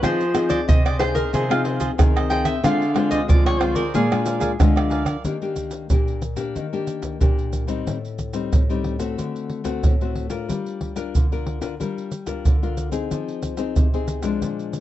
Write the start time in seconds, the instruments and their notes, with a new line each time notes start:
0.02 nylon-string guitar F3 C4 D#4 G#4, cavaquinho F4 G#4 C5 D#5, resonator guitar played with a steel bar C5, pandeiro, tamborim, maracas, surdo
0.20 pandeiro, maracas
0.34 nylon-string guitar C4 D#4 G#4, cavaquinho F4 G#4 C5 D#5, pandeiro, tamborim, maracas
0.49 cavaquinho F4 G#4 C5 D#5, resonator guitar played with a steel bar D5, pandeiro, maracas, surdo
0.68 nylon-string guitar C3, resonator guitar played with a steel bar D#5, pandeiro, maracas, surdo
0.85 cavaquinho G#4 C5 D#5, resonator guitar played with a steel bar D5, pandeiro, tamborim, maracas
0.99 nylon-string guitar C4 D#4 G#4, cavaquinho F4 G#4 C5 D#5, resonator guitar played with a steel bar C5, pandeiro, tamborim
1.14 cavaquinho G#4 C5 D#5, resonator guitar played with a steel bar A#4, pandeiro, maracas, surdo
1.33 nylon-string guitar C3 F3, cavaquinho F4 G#4 C5 D#5, resonator guitar played with a steel bar G#4, pandeiro, maracas, surdo
1.50 nylon-string guitar C4 D#4 G#4, resonator guitar played with a steel bar F4, pandeiro, tamborim, maracas
1.64 cavaquinho F4 G#4 C5 D#5, pandeiro
1.80 cavaquinho F4 G#4 C5 D#5, pandeiro, maracas, surdo
1.98 nylon-string guitar C3 D#3 C4 D#4 G#4, pandeiro, tamborim, maracas, surdo
2.16 cavaquinho G#4 C5 D#5, pandeiro, tamborim, maracas
2.30 cavaquinho F4 G#4 C5 D#5, resonator guitar played with a steel bar G5, pandeiro, maracas
2.45 cavaquinho G#4 C5 D#5, resonator guitar played with a steel bar E5, pandeiro, tamborim, maracas, surdo
2.63 nylon-string guitar D3 G#3 C4 F4, cavaquinho F4 G#4 C5 D5, resonator guitar played with a steel bar F5, pandeiro, tamborim, maracas, surdo
2.82 pandeiro, maracas
2.94 nylon-string guitar G#3 C4 F4, cavaquinho F4 G#4 C5 D5, pandeiro, tamborim
3.11 cavaquinho F4 G#4 C5 D5, resonator guitar played with a steel bar D#5, pandeiro, maracas, surdo
3.28 nylon-string guitar D3 F3, resonator guitar played with a steel bar D5, pandeiro, maracas, surdo
3.46 cavaquinho G#4 C5 D5, resonator guitar played with a steel bar C#5, pandeiro, tamborim, maracas
3.60 nylon-string guitar G#3 C4 F4, cavaquinho F4 G#4 C5 D5, resonator guitar played with a steel bar C5, pandeiro, tamborim
3.75 cavaquinho G#4 C5 D5, resonator guitar played with a steel bar A#4, pandeiro, maracas, surdo
3.93 nylon-string guitar A#2 G#3 D4 F4, cavaquinho G#4 A#4 D5 F5, resonator guitar played with a steel bar G#4, pandeiro, maracas, surdo
4.11 nylon-string guitar G#3 D4 F4, pandeiro, tamborim, maracas
4.25 cavaquinho G#4 A#4 D5 F5, pandeiro, maracas
4.40 cavaquinho G#4 A#4 D5 F5, pandeiro, maracas, surdo
4.59 nylon-string guitar D3 F3 G#3 D4 F4, pandeiro, tamborim, maracas, surdo
4.76 cavaquinho A#4 D5 F5, pandeiro, tamborim, maracas
4.90 cavaquinho G#4 A#4 D5 F5, pandeiro
5.05 cavaquinho A#4 D5 F5, pandeiro, tamborim, maracas, surdo
5.25 nylon-string guitar D#3 A#3 D4 G4, pandeiro, maracas, surdo
5.42 nylon-string guitar A#3 D4 G4, pandeiro, maracas
5.56 pandeiro, maracas, surdo
5.71 pandeiro, maracas
5.90 nylon-string guitar A#2 A#3 D4 G4, pandeiro, maracas, surdo
6.08 pandeiro, maracas
6.22 pandeiro, maracas
6.36 nylon-string guitar A#3 D4 G4, pandeiro, maracas, surdo
6.55 nylon-string guitar D#3, pandeiro, maracas, surdo
6.73 nylon-string guitar A#3 D4 G4, pandeiro, maracas
6.87 pandeiro, maracas
7.03 pandeiro, maracas, surdo
7.20 nylon-string guitar A#2 A#3 D4 G4, pandeiro, maracas, surdo
7.38 pandeiro, maracas
7.53 pandeiro, maracas, surdo
7.67 nylon-string guitar G3 C4 D#4, pandeiro, maracas, surdo
7.86 nylon-string guitar A2, pandeiro, maracas, surdo
8.05 pandeiro, maracas
8.19 pandeiro, maracas, surdo
8.33 nylon-string guitar G3 C4 D#4, pandeiro, maracas
8.52 nylon-string guitar A2, pandeiro, maracas, surdo
8.70 nylon-string guitar G3 C4 D#4, pandeiro, maracas
8.84 pandeiro
8.99 nylon-string guitar A3 C4 F#4, pandeiro, maracas, surdo
9.18 nylon-string guitar D3, pandeiro, maracas, surdo
9.36 pandeiro, maracas
9.50 pandeiro
9.64 nylon-string guitar A3 C4 F#4, pandeiro, maracas, surdo
9.83 nylon-string guitar A2, pandeiro, maracas, surdo
10.01 nylon-string guitar A3 C4 F#4, pandeiro, maracas
10.16 pandeiro, surdo
10.29 nylon-string guitar D4 F4 A#4, pandeiro, maracas, surdo
10.49 nylon-string guitar G3, pandeiro, maracas, surdo
10.66 pandeiro, maracas
10.81 pandeiro, surdo
10.96 nylon-string guitar D4 F4 A#4, pandeiro, maracas
11.15 nylon-string guitar D3, pandeiro, maracas, surdo
11.32 nylon-string guitar D4 F4 A#4, pandeiro, maracas
11.46 pandeiro
11.61 nylon-string guitar D4 F4 A#4, pandeiro, maracas, surdo
11.80 nylon-string guitar G3 D4 F4 A#4, pandeiro, maracas, surdo
11.98 pandeiro, maracas
12.12 pandeiro, maracas
12.26 nylon-string guitar D4 F4 A#4, pandeiro, maracas, surdo
12.45 nylon-string guitar D3, pandeiro, maracas, surdo
12.63 nylon-string guitar D4 F4 A#4, pandeiro, maracas
12.77 pandeiro, maracas
12.91 nylon-string guitar C4 D#4 G#4, pandeiro, maracas, surdo
13.11 nylon-string guitar F3, pandeiro, maracas, surdo
13.28 pandeiro, maracas
13.43 pandeiro, maracas, surdo
13.57 nylon-string guitar C4 D#4 G#4, pandeiro, maracas
13.76 nylon-string guitar C3, pandeiro, maracas, surdo
13.94 nylon-string guitar C4 D#4 G#4, pandeiro, maracas
14.08 pandeiro, maracas
14.23 nylon-string guitar F3 G#3 D4, pandeiro, maracas, surdo
14.42 nylon-string guitar A#2, pandeiro, maracas, surdo
14.59 pandeiro, maracas
14.73 pandeiro, maracas